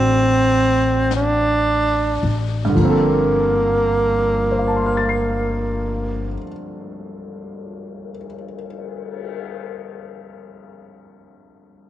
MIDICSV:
0, 0, Header, 1, 5, 480
1, 0, Start_track
1, 0, Key_signature, -2, "minor"
1, 0, Tempo, 1511335
1, 351, Tempo, 1657459
1, 831, Time_signature, 4, 2, 24, 8
1, 831, Tempo, 1744186
1, 3345, End_track
2, 0, Start_track
2, 0, Title_t, "Grand piano"
2, 0, Program_c, 0, 0
2, 0, Control_c, 0, 64, 127
2, 0, Note_on_c, 0, 54, 47
2, 0, Note_on_c, 0, 57, 47
2, 0, Note_on_c, 0, 60, 37
2, 0, Note_on_c, 0, 62, 33
2, 0, Note_on_c, 0, 66, 40
2, 798, Note_on_c, 0, 43, 50
2, 811, Note_on_c, 0, 50, 44
2, 825, Note_on_c, 0, 53, 48
2, 830, Note_off_c, 0, 60, 0
2, 831, Note_off_c, 0, 54, 0
2, 831, Note_off_c, 0, 57, 0
2, 833, Note_off_c, 0, 62, 0
2, 834, Note_off_c, 0, 66, 0
2, 835, Control_c, 0, 64, 0
2, 840, Note_on_c, 0, 58, 49
2, 854, Note_on_c, 0, 60, 48
2, 867, Note_on_c, 0, 69, 54
2, 877, Control_c, 0, 64, 127
2, 1313, Note_on_c, 0, 72, 33
2, 1333, Note_on_c, 0, 77, 32
2, 1357, Note_on_c, 0, 81, 30
2, 1382, Note_on_c, 0, 84, 31
2, 1409, Note_on_c, 0, 89, 29
2, 1439, Note_on_c, 0, 93, 28
2, 1472, Note_on_c, 0, 96, 28
2, 1797, Note_off_c, 0, 43, 0
2, 1809, Note_off_c, 0, 50, 0
2, 1822, Note_off_c, 0, 53, 0
2, 1837, Note_off_c, 0, 58, 0
2, 1851, Note_off_c, 0, 60, 0
2, 1864, Note_off_c, 0, 69, 0
2, 2299, Note_off_c, 0, 72, 0
2, 2319, Note_off_c, 0, 77, 0
2, 2343, Note_off_c, 0, 81, 0
2, 2368, Note_off_c, 0, 84, 0
2, 2394, Note_off_c, 0, 89, 0
2, 2425, Note_off_c, 0, 93, 0
2, 2457, Note_off_c, 0, 96, 0
2, 3345, End_track
3, 0, Start_track
3, 0, Title_t, "Tenor saxophone"
3, 0, Program_c, 1, 66
3, 0, Note_on_c, 1, 60, 82
3, 357, Note_off_c, 1, 60, 0
3, 365, Note_on_c, 1, 62, 69
3, 748, Note_off_c, 1, 62, 0
3, 848, Note_on_c, 1, 58, 66
3, 1834, Note_off_c, 1, 58, 0
3, 3345, End_track
4, 0, Start_track
4, 0, Title_t, "Upright bass"
4, 0, Program_c, 2, 32
4, 0, Note_on_c, 2, 33, 69
4, 665, Note_off_c, 2, 33, 0
4, 676, Note_on_c, 2, 33, 53
4, 820, Note_off_c, 2, 33, 0
4, 832, Note_on_c, 2, 31, 61
4, 1818, Note_off_c, 2, 31, 0
4, 3345, End_track
5, 0, Start_track
5, 0, Title_t, "Drums"
5, 352, Note_on_c, 9, 25, 33
5, 352, Note_on_c, 9, 38, 38
5, 352, Note_on_c, 9, 44, 47
5, 381, Note_off_c, 9, 38, 0
5, 381, Note_off_c, 9, 44, 0
5, 833, Note_on_c, 9, 36, 41
5, 833, Note_on_c, 9, 49, 48
5, 860, Note_off_c, 9, 36, 0
5, 861, Note_off_c, 9, 49, 0
5, 1064, Note_off_c, 9, 25, 0
5, 3345, End_track
0, 0, End_of_file